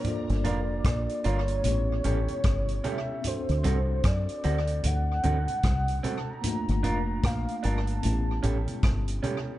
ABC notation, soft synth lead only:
X:1
M:4/4
L:1/16
Q:"Swing 16ths" 1/4=75
K:Dphr
V:1 name="Soft synth lead"
d2 d4 ^c8 =e2 | c4 d4 ^f6 a b- | b2 b2 f2 a8 z2 |]